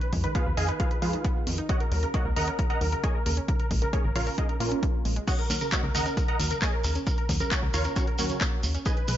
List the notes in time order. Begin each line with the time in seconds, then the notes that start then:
0.01 B4, closed hi-hat
0.13 F2 G#3, kick, open hi-hat
0.24 D#3 B4, closed hi-hat
0.35 B3 F4 G#4 B4 F5, kick, closed hi-hat
0.46 D#2 B4
0.57 F2 D#3 G#4 D#5 F5 G#5, open hi-hat
0.68 D#4 B4, closed hi-hat
0.80 D#3 F4 G#4 B4 F5, kick, closed hi-hat
0.91 B4, closed hi-hat
1.02 F2 G#3 F4 G#4 B4 F5, open hi-hat
1.13 D#3, closed hi-hat
1.24 B3, kick, closed hi-hat
1.47 F2 D#3, open hi-hat
1.58 D#4, closed hi-hat
1.69 C#3 F#4 C#5 D#5 F#5, kick, closed hi-hat
1.80 A#4, closed hi-hat
1.92 D#2 F#3 A#4, open hi-hat
2.03 C#3 A#4, closed hi-hat
2.14 A#3 F#4 C#5 D#5 F#5, kick, closed hi-hat
2.25 C#2 A#4
2.36 D#2 C#3 A#4 D#5 F#5 A#5, open hi-hat
2.48 C#4 A#4, closed hi-hat
2.59 C#3 A#4, kick, closed hi-hat
2.70 A#4 D#5 F#5 A#5, closed hi-hat
2.81 D#2 F#3 A#4, open hi-hat
2.92 C#3 A#4, closed hi-hat
3.04 A#3 G#4 C#5 D#5 G#5, kick, closed hi-hat
3.15 A#4
3.26 D#2 C#3 A#4, open hi-hat
3.37 C#4, closed hi-hat
3.48 C#3 A#4, kick, closed hi-hat
3.60 A#4, closed hi-hat
3.71 A#1 G#3, kick, open hi-hat
3.82 C#3 A#4, closed hi-hat
3.93 A#3 C#4 G#4 A#4 C#5, kick, closed hi-hat
4.04 G#1 A#4
4.15 A#1 C#3 F4 A#4 C#5 F5, open hi-hat
4.27 C#4 A#4, open hi-hat
4.38 C#3 D#4 G#4 A#4 D#5, kick, closed hi-hat
4.49 A#4, closed hi-hat
4.60 A#1 A#3 C#4 F4 A#4, open hi-hat
4.72 C#4, closed hi-hat
4.83 C#3, kick, closed hi-hat
5.05 A#1 G#3, open hi-hat
5.16 G#3, closed hi-hat
5.27 C#3 F#4 C#5 D#5 F#5, kick, closed hi-hat, crash, shekere
5.39 A#4, closed hi-hat
5.50 D#2 F#3 A#4, open hi-hat, shekere
5.61 C#3 A#4, closed hi-hat, shekere
5.72 A#3 F#4 C#5 D#5 F#5, kick, clap, closed hi-hat, shekere
5.83 C#2 A#4
5.95 D#2 C#3 A#4 D#5 F#5 A#5, open hi-hat, shekere
6.06 C#4 A#4, closed hi-hat, shekere
6.17 C#3 A#4, kick, closed hi-hat, shekere
6.28 A#4 D#5 F#5 A#5, closed hi-hat
6.39 D#2 F#3 A#4, open hi-hat, shekere
6.51 C#3 A#4, closed hi-hat, shekere
6.62 A#3 G#4 C#5 D#5 G#5, kick, clap, closed hi-hat, shekere
6.73 A#4
6.84 D#2 C#3 A#4, open hi-hat, shekere
6.95 C#4, closed hi-hat, shekere
7.07 C#3 A#4, kick, closed hi-hat, shekere
7.18 A#4, closed hi-hat
7.29 D#2 F#3, kick, open hi-hat, shekere
7.40 C#3 A#4, closed hi-hat, shekere
7.51 A#3 C#4 F#4 A#4 C#5, kick, clap, closed hi-hat, shekere
7.63 C#2 A#4
7.74 D#2 C#3 F4 A#4 C#5 F5, open hi-hat, shekere
7.84 C#4 A#4, closed hi-hat, shekere
7.96 C#3 C#4 F#4 A#4 C#5, kick, closed hi-hat, shekere
8.07 A#4, closed hi-hat
8.18 D#2 F#3 C#4 F#4 A#4 C#5, open hi-hat, shekere
8.30 C#3, closed hi-hat, shekere
8.41 A#3, kick, clap, closed hi-hat, shekere
8.63 D#2 C#3, open hi-hat, shekere
8.74 C#4, closed hi-hat, shekere
8.86 D#3 G#4 B4 D#5 G#5, kick, closed hi-hat, shekere
8.97 B4, closed hi-hat
9.08 B1 G#3 B4, open hi-hat, shekere